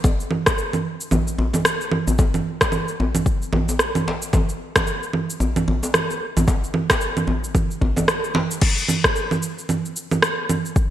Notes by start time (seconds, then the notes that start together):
0.04 kick, djembe tone, shaker
0.20 shaker
0.31 low conga
0.46 kick, cross-stick, djembe slap, shaker
0.58 shaker
0.73 low conga, shaker
1.01 shaker
1.11 low conga, djembe bass, shaker
1.28 shaker
1.38 djembe bass
1.53 djembe tone, low conga, shaker
1.65 cross-stick, shaker
1.81 shaker
1.92 low conga
2.07 djembe bass, shaker
2.19 kick, djembe tone, shaker
2.34 low conga, shaker
2.61 kick, cross-stick, djembe slap, shaker
2.72 low conga, shaker
2.88 shaker
3.00 djembe bass
3.15 low conga, shaker
3.26 kick, shaker
3.42 shaker
3.53 low conga, djembe bass
3.69 djembe tone, shaker
3.79 cross-stick, shaker
3.95 low conga, shaker
4.08 djembe slap
4.22 shaker
4.33 kick, djembe tone, low conga, shaker
4.49 shaker
4.76 kick, cross-stick, djembe slap, low conga, shaker
4.87 shaker
5.03 shaker
5.13 low conga
5.30 shaker
5.40 djembe bass, shaker
5.56 low conga, shaker
5.68 djembe bass
5.83 djembe tone, shaker
5.94 cross-stick, low conga, shaker
6.10 shaker
6.37 low conga, djembe bass, shaker
6.48 kick, djembe tone, shaker
6.64 shaker
6.74 low conga
6.90 kick, cross-stick, djembe slap, shaker
7.01 shaker
7.17 low conga, shaker
7.27 djembe bass
7.44 shaker
7.55 kick, low conga, shaker
7.71 shaker
7.81 kick, djembe bass
7.96 djembe tone, low conga, shaker
8.08 cross-stick, shaker
8.24 shaker
8.34 djembe slap, djembe tone, low conga
8.51 shaker
8.61 kick, crash, shaker
8.78 shaker
8.88 low conga, shaker
9.04 kick, cross-stick, shaker
9.16 shaker
9.31 low conga, shaker
9.43 shaker
9.58 shaker
9.69 low conga, shaker
9.85 shaker
9.96 shaker
10.11 low conga, shaker
10.22 cross-stick, shaker
10.49 low conga, shaker
10.65 shaker
10.76 kick, shaker